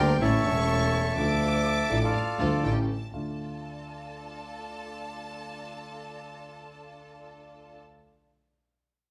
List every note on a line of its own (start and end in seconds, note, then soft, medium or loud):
0.00 0.17 D2 loud
0.00 0.17 D2 medium
0.00 0.17 D3 medium
0.00 0.17 G3 medium
0.00 0.17 A#3 medium
0.00 0.16 D4 medium
0.00 0.16 G4 medium
0.00 0.17 G4 medium
0.00 0.16 A#4 medium
0.00 0.17 A#4 medium
0.00 0.17 D5 medium
0.00 0.22 G5 loud
0.00 0.20 C6 loud
0.20 0.41 A1 medium
0.20 0.41 A2 medium
0.20 0.41 E3 medium
0.20 0.41 A3 medium
0.20 0.41 C#4 medium
0.20 0.41 E4 medium
0.20 0.41 A4 medium
0.20 1.13 C#5 medium
0.20 1.98 E5 medium
0.20 1.99 A5 loud
0.20 1.13 C#6 loud
0.44 1.13 E1 loud
0.44 1.14 E1 medium
0.44 1.14 E2 medium
0.44 1.13 E3 medium
0.44 1.14 A3 medium
0.44 1.13 C#4 medium
0.44 1.14 C#4 medium
0.44 1.13 E4 medium
0.44 1.13 A4 medium
0.44 1.15 A4 medium
1.15 1.86 D2 medium
1.15 1.86 D3 medium
1.15 1.85 F3 medium
1.15 1.86 A3 medium
1.15 1.86 D4 medium
1.15 1.86 F4 medium
1.15 1.86 A4 medium
1.15 2.15 D6 loud
1.19 1.87 A4 medium
1.89 2.10 A1 loud
1.89 2.10 A1 medium
1.89 2.10 A2 medium
1.89 2.10 F3 medium
1.89 2.10 A3 medium
1.89 2.10 D4 medium
1.89 2.10 F4 medium
1.89 2.10 A4 medium
2.04 2.73 F4 soft
2.04 2.73 A4 medium
2.04 2.74 D5 medium
2.14 2.64 F5 medium
2.38 2.60 D2 medium
2.38 2.60 D3 medium
2.38 2.60 F3 medium
2.38 2.60 A3 medium
2.38 2.60 D4 medium
2.38 2.60 F4 medium
2.38 2.60 A4 medium
2.63 2.84 A1 medium
2.63 2.85 A1 medium
2.63 2.84 A2 medium
2.63 2.84 E3 medium
2.63 2.84 A3 medium
2.63 2.84 C#4 medium
2.63 2.85 G4 medium
2.63 2.85 A4 medium
2.63 2.75 G5 medium
2.89 3.12 A5 medium
3.13 3.34 D2 soft
3.13 7.96 D2 medium
3.13 7.96 A3 soft
3.13 7.78 D4 medium
3.13 7.96 D4 soft
3.13 7.78 F4 medium
3.13 7.96 F4 medium
3.13 7.78 A4 medium
3.13 7.79 A5 medium